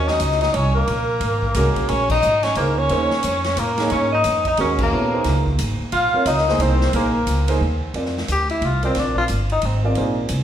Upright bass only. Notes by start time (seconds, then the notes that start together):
Already playing: D#2
0.20 C#2
0.54 C2
0.88 A#1
1.20 G#1
1.54 C2
1.89 A#1
2.23 G#1
2.56 C#2
2.90 D#2
3.24 F2
3.57 A2
3.91 G#2
4.25 F2
4.58 D#2
4.92 A#1
5.25 C#2
5.59 G#1
5.80 muted upright bass stroke
5.92 A#1
6.14 muted upright bass stroke
6.26 C#2
6.59 C2
6.93 A#1
7.27 C#2
7.61 D#2
7.94 F2
8.28 D2
8.61 C2
8.96 A#1
9.30 G1
9.63 G#1
9.97 A#1
10.30 C2